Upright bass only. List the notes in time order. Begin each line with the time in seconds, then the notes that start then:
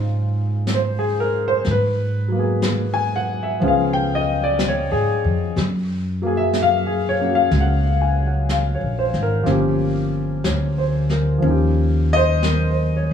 Already playing: G#2
1.66 G#2
3.62 C#2
4.92 G#2
5.24 F2
5.56 F#2
7.51 C#2
8.81 A#1
9.14 G#1
9.46 G1
10.44 D2
11.42 D#2